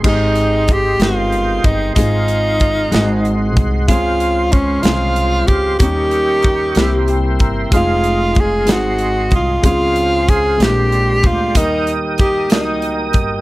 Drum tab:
CC |x-----|------|------|------|
HH |-xxxxx|xxxxxx|xxxxxx|xxxxxx|
SD |---o--|---o--|---o--|---o--|
BD |o-o--o|o-o--o|o-o--o|o-o--o|

CC |------|------|------|
HH |xxxxxx|xxxxxx|xxxxxx|
SD |---o--|---o--|---o--|
BD |o-o--o|o-o--o|o-o--o|